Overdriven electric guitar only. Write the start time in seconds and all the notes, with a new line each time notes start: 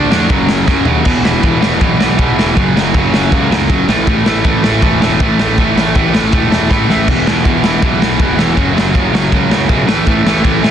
Already playing: A3 D4
0.11 D3 A3 D4
0.29 F#2 C#3 F#3
0.67 F#2 C#3 F#3
0.86 F#2 C#3 F#3
1.05 E2 B2 E3
1.25 E2 B2 E3
1.43 E2 B2 E3
1.61 E2 B2 E3
1.81 E2 B2 E3
1.99 E2 B2 E3
2.18 E2 B2 E3
2.38 E2 B2 E3
2.56 F#2 C#3 F#3
2.75 F#2 C#3 F#3
2.95 F#2 C#3 F#3
3.13 F#2 C#3 F#3
3.32 F#2 C#3 F#3
3.51 F#2 C#3 F#3
3.69 F#2 C#3 F#3
3.89 A2 E3 A3
4.08 A2 E3 A3
4.26 A2 E3 A3
4.44 A2 E3 A3
4.63 A2 E3 A3
4.81 A2 E3 A3
5.01 A2 E3 A3
5.21 A2 E3 A3
5.39 A2 E3 A3
5.58 A2 E3 A3
5.76 A2 E3 A3
5.96 A2 E3 A3
6.14 A2 E3 A3
6.33 A2 E3 A3
6.51 A2 E3 A3
6.70 A2 E3 A3
6.89 A2 E3 A3
7.08 E2 B2 E3
7.27 E2 B2 E3
7.45 E2 B2 E3
7.63 E2 B2 E3
7.83 E2 B2 E3
8.01 E2 B2 E3
8.21 E2 B2 E3
8.38 E2 B2 E3
8.56 F#2 C#3 F#3
8.74 F#2 C#3 F#3
8.94 F#2 C#3 F#3
9.14 F#2 C#3 F#3
9.33 F#2 C#3 F#3
9.50 F#2 C#3 F#3
9.68 F#2 C#3 F#3
9.87 A2 E3 A3
10.07 A2 E3 A3
10.26 A2 E3 A3
10.43 A2 E3 A3
10.63 A2 E3 A3